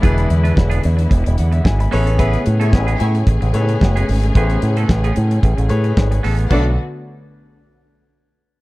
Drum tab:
CC |----------------|----------------|----------------|x---------------|
HH |xxxx-xxxxxxx-xox|xxxx-xxxxxxx-xox|xxxx-xxxxxxx-xox|----------------|
SD |----o-------o-o-|----o-------o---|----o-------o-o-|----------------|
BD |o---o---o---o---|o---o---o---o---|o---o---o---o---|o---------------|